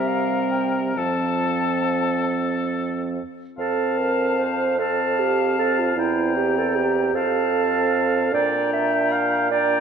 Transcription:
Already playing: bassoon C3, french horn G3, clarinet C4, oboe A#4
0.06 flute F5
0.51 flute G5
0.95 bassoon F2, french horn F3, clarinet C4, oboe A4, flute A5
3.58 bassoon F2, french horn C4, clarinet A4, oboe F5, flute A5
3.98 clarinet A#4
4.39 clarinet C5
4.79 french horn C4, clarinet A4, oboe F5, flute A5
5.19 clarinet G4
5.59 clarinet A4
5.79 clarinet F4
5.97 bassoon E2, french horn C4, clarinet E4, oboe G5, flute A#5
6.36 clarinet G4
6.58 clarinet A4
6.76 clarinet G4
7.14 bassoon F2, french horn C4, clarinet A4, oboe F5, flute A5
8.33 bassoon A#2, french horn D4, clarinet D5, oboe G5, flute A#5
8.73 clarinet E5
9.12 clarinet F5
9.51 french horn D4, clarinet D5, oboe G5, flute A#5

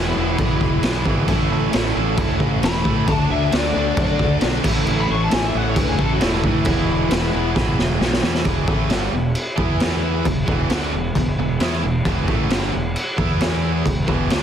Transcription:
Already playing: fingered electric bass E1, overdriven electric guitar E2 B2 E3, distorted electric guitar E3 G#3 B3 E4, lead electric guitar E4, tonewheel organ G#4 E5 B5
0.16 fingered electric bass E1, overdriven electric guitar E2 B2, distorted electric guitar E3 G#3 B3 E4
0.38 fingered electric bass A1, distorted electric guitar E3 G#3 B3 E4, kick, crash
0.61 fingered electric bass E1, kick
0.83 fingered electric bass B1, overdriven electric guitar E2 B2, distorted electric guitar E3 G#3 B3 E4, snare, crash
1.05 fingered electric bass G#1, overdriven electric guitar E2 B2, distorted electric guitar E3 G#3 B3 E4, kick
1.27 fingered electric bass A1, distorted electric guitar A2 E3 A3 C#4 E4, tonewheel organ A4 E5 C#6, kick, crash
1.52 fingered electric bass A1
1.71 fingered electric bass A1, distorted electric guitar A2 E3 A3 C#4 E4, snare, crash
1.95 fingered electric bass A1, distorted electric guitar A2 E3 A3 C#4 E4
2.16 fingered electric bass D2, distorted electric guitar A2 E3 A3 C#4 E4, kick, crash
2.40 fingered electric bass A1, kick
2.62 fingered electric bass E1, distorted electric guitar A2 E3 A3 C#4 E4, lead electric guitar B5, snare, crash
2.84 distorted electric guitar A2 E3 A3 C#4 E4, fingered electric bass A2, kick
2.88 overdriven electric guitar A2
3.07 fingered electric bass D2, distorted electric guitar D3 A3 D4 F#4, tonewheel organ A4 F#5 D6, lead electric guitar A5, kick, crash
3.31 fingered electric bass D2, lead electric guitar E5
3.52 fingered electric bass D2, distorted electric guitar D3 A3 D4 F#4, snare, crash
3.56 lead electric guitar D5
3.74 fingered electric bass D2, distorted electric guitar D3 A3 D4 F#4, lead electric guitar D5
3.96 fingered electric bass F#2, distorted electric guitar D3 A3 D4 F#4, kick, crash
4.02 lead electric guitar D5
4.19 fingered electric bass D2, kick
4.41 fingered electric bass B1, distorted electric guitar D3 A3 D4 F#4, snare, crash
4.62 fingered electric bass A1, distorted electric guitar A2 E3 A3 C#4 E4, kick, crash
4.66 overdriven electric guitar A3, tonewheel organ E5 C#6
4.85 fingered electric bass A1, distorted electric guitar A2 E3 A3 C#4 E4, crash
5.01 lead electric guitar B5
5.10 fingered electric bass A1, lead electric guitar C#6
5.23 lead electric guitar A5
5.29 fingered electric bass A1, distorted electric guitar A2 E3 A3 C#4 E4, snare, crash
5.34 lead electric guitar G#5
5.46 lead electric guitar E5
5.52 fingered electric bass A1, distorted electric guitar A2 E3 A3 C#4 E4
5.57 lead electric guitar F#5
5.69 lead electric guitar C#5
5.75 fingered electric bass D2, distorted electric guitar A2 E3 A3 C#4 E4, kick, crash
5.80 lead electric guitar B4
5.87 lead electric guitar G#4
5.99 fingered electric bass A1, overdriven electric guitar A2 E3 A3, lead electric guitar A4, kick
6.13 lead electric guitar F#4
6.20 fingered electric bass E1, distorted electric guitar A2 E3 A3 C#4 E4, snare, crash
6.24 lead electric guitar E4
6.42 distorted electric guitar A2 E3 A3 C#4 E4, fingered electric bass A2, kick
6.47 lead electric guitar E4
6.64 fingered electric bass E1, overdriven electric guitar E2 B2, distorted electric guitar E3 G#3 B3 E4, tonewheel organ G#4 B5, kick, crash
6.69 overdriven electric guitar E3, tonewheel organ E5
6.89 fingered electric bass E1
7.10 fingered electric bass E1, distorted electric guitar E3 G#3 B3 E4, snare, crash
7.31 fingered electric bass E1, distorted electric guitar E3 G#3 B3 E4
7.35 overdriven electric guitar E2 B2
7.54 fingered electric bass A1, distorted electric guitar E3 G#3 B3 E4, kick, snare
7.79 fingered electric bass E1, snare
7.98 fingered electric bass B1, overdriven electric guitar E2, distorted electric guitar E3 G#3 B3 E4, snare
8.03 overdriven electric guitar B2 E3
8.13 snare
8.21 fingered electric bass E2, overdriven electric guitar B2, distorted electric guitar E3 G#3 B3 E4, snare
8.26 overdriven electric guitar E2
8.34 snare
8.44 fingered electric bass E1, distorted electric guitar E2 B2 E3, tonewheel organ E5 B5, kick, crash
8.48 tonewheel organ G#4
8.67 fingered electric bass A1, distorted electric guitar A2 E3 A3, kick
8.89 fingered electric bass G1, distorted electric guitar G2 D3 G3, snare, crash
9.12 fingered electric bass E1, distorted electric guitar E2 B2
9.35 crash
9.56 fingered electric bass E2, distorted electric guitar E3 B3 E4, kick
9.80 snare, crash
10.25 fingered electric bass E1, distorted electric guitar E2 B2, kick, crash
10.46 fingered electric bass E1, distorted electric guitar E2 B2 E3, kick
10.69 fingered electric bass D2, distorted electric guitar D3 A3 D4, snare, crash
10.93 fingered electric bass E1, distorted electric guitar E2 B2
11.15 fingered electric bass E1, distorted electric guitar E2 B2, kick, crash
11.38 fingered electric bass E1, distorted electric guitar E2 B2
11.60 fingered electric bass E2, distorted electric guitar E3 B3 E4, snare, crash
11.82 fingered electric bass E1, distorted electric guitar E2 B2
12.05 fingered electric bass E1, distorted electric guitar E2 B2 E3, tonewheel organ F#5, kick, crash
12.27 fingered electric bass A1, distorted electric guitar A2 E3 A3, kick
12.50 fingered electric bass G1, distorted electric guitar G2 D3 G3, snare, crash
12.73 fingered electric bass E1, distorted electric guitar E2 B2
12.96 crash
13.17 fingered electric bass E2, distorted electric guitar E3 B3 E4, kick
13.41 snare, crash
13.86 fingered electric bass E1, distorted electric guitar E2 B2, kick, crash
14.07 fingered electric bass E1, distorted electric guitar E2 B2 E3, kick
14.30 fingered electric bass D2, distorted electric guitar D3 A3 D4, snare, crash

